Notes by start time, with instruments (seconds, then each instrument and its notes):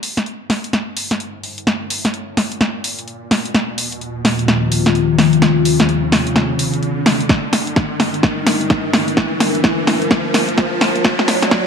Already playing: analog synth pad G3 D4 A#4, riser
0.03 open hi-hat
0.17 snare, closed hi-hat
0.26 closed hi-hat
0.50 snare, open hi-hat
0.64 closed hi-hat
0.73 snare, closed hi-hat
0.97 open hi-hat
1.11 snare, closed hi-hat
1.20 closed hi-hat
1.44 open hi-hat
1.58 closed hi-hat
1.67 snare, closed hi-hat
1.90 open hi-hat
2.05 snare, closed hi-hat
2.14 closed hi-hat
2.37 snare, open hi-hat
2.52 closed hi-hat
2.61 snare, closed hi-hat
2.84 open hi-hat
2.99 closed hi-hat
3.08 closed hi-hat
3.31 snare, open hi-hat
3.45 closed hi-hat
3.55 analog synth pad D#3 A#3 F4, snare, closed hi-hat
3.78 open hi-hat
3.92 closed hi-hat
4.01 closed hi-hat
4.25 snare, open hi-hat
4.39 closed hi-hat
4.48 snare, closed hi-hat
4.72 open hi-hat
4.86 snare, closed hi-hat
4.95 closed hi-hat
5.19 snare, open hi-hat
5.33 closed hi-hat
5.42 analog synth pad C4, snare, closed hi-hat
5.65 open hi-hat
5.80 snare, closed hi-hat
5.89 closed hi-hat
6.12 snare, open hi-hat
6.27 closed hi-hat
6.36 snare, closed hi-hat
6.59 open hi-hat
6.74 closed hi-hat
6.83 closed hi-hat
7.06 snare, open hi-hat
7.20 closed hi-hat
7.29 analog synth pad G3 D4 A#4, kick, snare, closed hi-hat
7.53 snare, open hi-hat
7.67 closed hi-hat
7.76 kick, snare, closed hi-hat
8.00 snare, open hi-hat
8.14 closed hi-hat
8.23 kick, snare, closed hi-hat
8.47 snare, open hi-hat
8.61 closed hi-hat
8.70 kick, snare, closed hi-hat
8.93 snare, open hi-hat
9.08 closed hi-hat
9.17 kick, snare, closed hi-hat
9.40 snare, open hi-hat
9.55 closed hi-hat
9.64 kick, snare, closed hi-hat
9.87 snare, open hi-hat
10.02 closed hi-hat
10.11 kick, snare, closed hi-hat
10.34 snare, open hi-hat
10.49 closed hi-hat
10.58 kick, snare, closed hi-hat
10.81 snare, open hi-hat
10.96 closed hi-hat
11.04 analog synth pad A#3 F4 D5, kick, snare, closed hi-hat
11.19 snare
11.28 snare, open hi-hat
11.42 snare, closed hi-hat
11.51 kick, snare, closed hi-hat